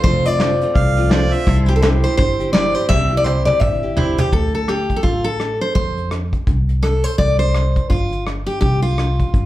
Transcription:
Already playing: pedal steel guitar F4 A4 C5
0.04 upright bass F1, steel-string acoustic guitar F2 C3 F3 A3 C4 F4 C5, kick, closed hi-hat
0.25 steel-string acoustic guitar F3 A3 C4 F4 D5, closed hi-hat
0.38 grand piano F4 A4 C5, snare, closed hi-hat
0.61 steel-string acoustic guitar F3 A3 C4 F4, closed hi-hat
0.75 upright bass C2, harmonica F5, kick, closed hi-hat
0.97 steel-string acoustic guitar F3 A3 C4 F4, closed hi-hat
1.10 steel-string acoustic guitar F3 A3 C4 F4, grand piano F4 A4 C5, harmonica D5, snare, closed hi-hat
1.33 steel-string acoustic guitar F3 A3 C4 F4, harmonica E5, closed hi-hat
1.47 upright bass C2, steel-string acoustic guitar C3 G3 C4 E4 G4, pedal steel guitar E4 A4 C5, kick, closed hi-hat
1.66 steel-string acoustic guitar E4 G4, closed hi-hat
1.71 steel-string acoustic guitar C4, pedal steel guitar G4
1.76 steel-string acoustic guitar A4
1.82 grand piano E4 G4 C5, steel-string acoustic guitar A4, snare, closed hi-hat
2.04 steel-string acoustic guitar C4 E4 G4 C5, closed hi-hat
2.17 upright bass G1, steel-string acoustic guitar C5, kick, closed hi-hat
2.40 steel-string acoustic guitar C4 E4 G4, closed hi-hat
2.53 steel-string acoustic guitar G3 C4 E4 G4 D5, grand piano E4 G4 C5, snare, closed hi-hat
2.75 steel-string acoustic guitar C4 E4 G4 C5, closed hi-hat
2.89 upright bass C2, steel-string acoustic guitar C3 G3 C4 E4 G4 E5, kick, snare
3.11 steel-string acoustic guitar C4 E4 G4
3.17 steel-string acoustic guitar D5
3.24 grand piano E4 G4 C5, steel-string acoustic guitar C5, high tom
3.45 steel-string acoustic guitar C4 E4 G4 D5, high tom
3.60 upright bass G1, steel-string acoustic guitar E5, kick, mid tom
3.83 steel-string acoustic guitar C4 E4 G4
3.96 steel-string acoustic guitar G3 C4 E4 G4, grand piano E4 G4 C5, floor tom
4.18 steel-string acoustic guitar C4 E4 G4, floor tom
4.33 upright bass D2, steel-string acoustic guitar A4, kick, closed hi-hat
4.54 steel-string acoustic guitar A4, closed hi-hat
4.68 steel-string acoustic guitar G4, cross-stick, closed hi-hat
4.90 kick, closed hi-hat
4.96 steel-string acoustic guitar A4
5.03 upright bass A1, steel-string acoustic guitar F4, kick, closed hi-hat
5.24 steel-string acoustic guitar A4, closed hi-hat
5.40 cross-stick, closed hi-hat
5.61 steel-string acoustic guitar C5, closed hi-hat
5.75 upright bass F2, steel-string acoustic guitar C5, kick, closed hi-hat
5.97 closed hi-hat
6.11 cross-stick, closed hi-hat
6.33 kick, closed hi-hat
6.47 upright bass C2, kick, closed hi-hat
6.69 closed hi-hat
6.83 steel-string acoustic guitar A4, cross-stick, closed hi-hat
7.04 steel-string acoustic guitar C5, closed hi-hat
7.18 upright bass C2, steel-string acoustic guitar D5, kick, closed hi-hat
7.39 steel-string acoustic guitar C5, closed hi-hat
7.55 cross-stick, closed hi-hat
7.76 kick, closed hi-hat
7.90 upright bass G1, steel-string acoustic guitar F4, kick, closed hi-hat
8.12 closed hi-hat
8.27 cross-stick, closed hi-hat
8.47 steel-string acoustic guitar G4, closed hi-hat
8.61 upright bass C2, steel-string acoustic guitar G4, kick, closed hi-hat
8.82 steel-string acoustic guitar F4, closed hi-hat
8.98 cross-stick, closed hi-hat
9.20 kick, closed hi-hat
9.34 upright bass G1, kick, closed hi-hat

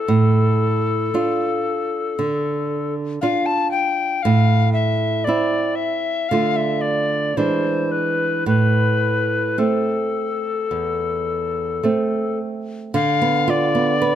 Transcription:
Already playing: recorder A4
0.08 nylon-string guitar A2
1.14 nylon-string guitar D4 F4
2.19 nylon-string guitar D3
3.21 nylon-string guitar D4 F4, recorder F5
3.46 recorder A5
3.71 recorder G5
4.23 nylon-string guitar A2, recorder F5
4.73 recorder E5
5.24 nylon-string guitar C4, recorder D5
5.28 nylon-string guitar E4
5.75 recorder E5
6.29 nylon-string guitar D3 A3 F4, recorder F5
6.56 recorder E5
6.81 recorder D5
7.37 nylon-string guitar E3 G#3 D4, recorder C5
7.92 recorder B4
8.46 nylon-string guitar A2, recorder B4
9.58 nylon-string guitar A3 C4, recorder A4
10.71 nylon-string guitar E2
11.83 nylon-string guitar A3 C4
12.94 nylon-string guitar D3, recorder F5
13.22 nylon-string guitar B3
13.48 nylon-string guitar F4, recorder D5
13.75 nylon-string guitar B3
14.02 nylon-string guitar B4

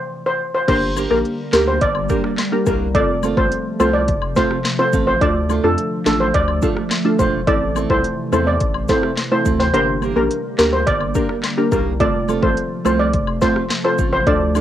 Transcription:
0.26 steel pan C5
0.55 steel pan C5
0.68 sub bass G1, ambient pad D3 G3 A#3, synth pluck A#3 D4 G4 A#4, steel pan C5, kick, closed hi-hat, crash
0.96 nylon-string guitar A#3 D4 G4 A#4, cabasa, high woodblock
1.10 sub bass A#1, synth pluck A#3 D4 G4 A#4, steel pan A#4
1.25 closed hi-hat
1.53 sub bass D2, nylon-string guitar A#3 D4 G4 A#4, synth pluck A#3 D4 G4 A#4, steel pan A#4, snare, clap, cabasa, high woodblock
1.68 steel pan C5
1.81 sub bass G1, steel pan D5, kick, closed hi-hat
1.95 high woodblock
2.09 nylon-string guitar A#3 D4 G4 A#4, synth pluck A#3 D4 G4 A#4, kick, cabasa
2.24 muted nylon-string guitar stroke, cross-stick
2.38 snare, clap, closed hi-hat, high woodblock
2.52 synth pluck A#3 D4 G4 A#4
2.66 sub bass C2, nylon-string guitar A#3 D4 G4 A#4, steel pan A#4, kick, cabasa
2.95 sub bass F1, ambient pad C3 F3 A3, synth pluck A3 C4 F4 A4, steel pan D5, kick, closed hi-hat
3.23 nylon-string guitar A3 C4 F4 A4, cabasa, high woodblock
3.37 sub bass A1, synth pluck A3 C4 F4 A4, steel pan C5, kick
3.52 closed hi-hat
3.79 sub bass C2, nylon-string guitar A3 C4 F4 A4, synth pluck A3 C4 F4 A4, steel pan C5, cabasa, high woodblock
3.93 steel pan D5
4.08 sub bass F1, kick, closed hi-hat
4.22 high woodblock
4.36 nylon-string guitar A3 C4 F4 A4, synth pluck A3 C4 F4 A4, steel pan C5, kick, snare, cabasa
4.51 cross-stick
4.65 snare, clap, closed hi-hat, high woodblock
4.78 synth pluck A3 C4 F4 A4, steel pan C5, muted nylon-string guitar stroke
4.92 sub bass A1, nylon-string guitar A3 C4 F4 A4, kick, cabasa
5.07 steel pan C5
5.21 sub bass D2, ambient pad D3 A3, synth pluck A3 D4 F4 A4, steel pan D5, kick, closed hi-hat
5.49 nylon-string guitar A3 D4 F4 A4, cabasa, high woodblock
5.64 sub bass F2, synth pluck A3 D4 F4 A4, steel pan A4
5.78 closed hi-hat
6.06 sub bass A1, nylon-string guitar A3 D4 F4 A4, synth pluck A3 D4 F4 A4, steel pan A4, snare, clap, cabasa, high woodblock
6.20 steel pan C5
6.34 sub bass D2, steel pan D5, kick, closed hi-hat
6.48 high woodblock
6.62 nylon-string guitar A3 D4 F4 A4, synth pluck A3 D4 F4 A4, kick, cabasa
6.76 muted nylon-string guitar stroke, cross-stick
6.91 snare, clap, closed hi-hat, high woodblock
7.05 synth pluck A3 D4 F4 A4
7.19 sub bass E1, nylon-string guitar A3 D4 F4 A4, steel pan C5, kick, cabasa
7.47 sub bass A1, ambient pad C3 E3, synth pluck A3 C4 E4 A4, steel pan D5, kick, closed hi-hat
7.75 nylon-string guitar A3 C4 E4 A4, cabasa, high woodblock
7.90 sub bass C2, synth pluck A3 C4 E4 A4, steel pan C5, kick
8.04 closed hi-hat
8.32 sub bass E2, nylon-string guitar A3 C4 E4 A4, synth pluck A3 C4 E4 A4, steel pan C5, cabasa, high woodblock
8.47 steel pan D5
8.60 sub bass A1, kick, closed hi-hat
8.74 high woodblock
8.88 nylon-string guitar A3 C4 E4 A4, synth pluck A3 C4 E4 A4, steel pan C5, kick, snare, cabasa
9.03 cross-stick
9.17 snare, clap, closed hi-hat, high woodblock
9.31 synth pluck A3 C4 E4 A4, steel pan C5, muted nylon-string guitar stroke
9.45 sub bass D2, nylon-string guitar A3 C4 E4 A4, kick, cabasa
9.60 steel pan C5, snare
9.74 sub bass G1, ambient pad D3 G3 A#3, synth pluck A#3 D4 G4 A#4, steel pan C5, closed hi-hat
10.02 nylon-string guitar A#3 D4 G4 A#4, cabasa, high woodblock
10.16 sub bass A#1, synth pluck A#3 D4 G4 A#4, steel pan A#4
10.31 closed hi-hat
10.58 sub bass D2, nylon-string guitar A#3 D4 G4 A#4, synth pluck A#3 D4 G4 A#4, steel pan A#4, snare, clap, cabasa, high woodblock
10.73 steel pan C5
10.87 sub bass G1, steel pan D5, kick, closed hi-hat
11.01 high woodblock
11.15 nylon-string guitar A#3 D4 G4 A#4, synth pluck A#3 D4 G4 A#4, kick, cabasa
11.29 muted nylon-string guitar stroke, cross-stick
11.44 snare, clap, closed hi-hat, high woodblock
11.58 synth pluck A#3 D4 G4 A#4
11.71 sub bass C2, nylon-string guitar A#3 D4 G4 A#4, steel pan A#4, kick, cabasa
12.00 sub bass F1, ambient pad C3 F3 A3, synth pluck A3 C4 F4 A4, steel pan D5, kick, closed hi-hat
12.28 nylon-string guitar A3 C4 F4 A4, cabasa, high woodblock
12.42 sub bass A1, synth pluck A3 C4 F4 A4, steel pan C5, kick
12.57 closed hi-hat
12.85 sub bass C2, nylon-string guitar A3 C4 F4 A4, synth pluck A3 C4 F4 A4, steel pan C5, cabasa, high woodblock
12.99 steel pan D5
13.13 sub bass F1, kick, closed hi-hat
13.27 high woodblock
13.41 nylon-string guitar A3 C4 F4 A4, synth pluck A3 C4 F4 A4, steel pan C5, kick, snare, cabasa
13.56 cross-stick
13.70 snare, clap, closed hi-hat, high woodblock
13.84 synth pluck A3 C4 F4 A4, steel pan C5, muted nylon-string guitar stroke
13.98 sub bass A1, nylon-string guitar A3 C4 F4 A4, kick, cabasa
14.13 steel pan C5
14.27 sub bass D2, ambient pad D3, synth pluck A3 D4 F4 A4, steel pan D5, kick, closed hi-hat
14.55 nylon-string guitar A3 D4 F4 A4, cabasa, high woodblock

